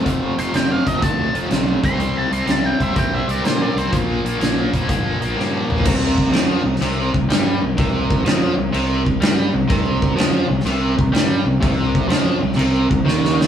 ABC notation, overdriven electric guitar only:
X:1
M:4/4
L:1/8
Q:"Swing" 1/4=125
K:Bblyd
V:1 name="Overdriven electric guitar" clef=bass
[F,,C,F,] [F,,C,F,] [F,,C,F,] [F,,C,F,] [F,,C,F,] [F,,C,F,] [F,,C,F,] [C,G,C] | [C,G,C] [C,G,C] [C,G,C] [C,G,C] [C,G,C] [C,G,C] [C,G,C] [C,G,C] | [B,,F,B,] [B,,F,B,] [B,,F,B,] [B,,F,B,] [B,,F,B,] [B,,F,B,] [B,,F,B,] [B,,F,B,] | C,2 F, C, C, C, G, C, |
C,2 F, C, C, C, G, C, | C,2 F, C, C, C, G, C, | C,2 F, C, C, C, _E,2 |]